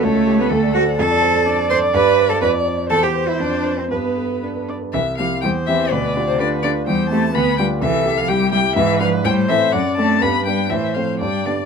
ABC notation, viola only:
X:1
M:2/4
L:1/8
Q:1/4=124
K:Dmix
V:1 name="Viola"
^c2 A2- | [K:C] A2 d2- | d2 d2 | c4 |
B2 B d | z2 c2 | d2 B2 | c2 B2 |
A2 G2 | B2 c2 | d2 B2 | c2 d2 |]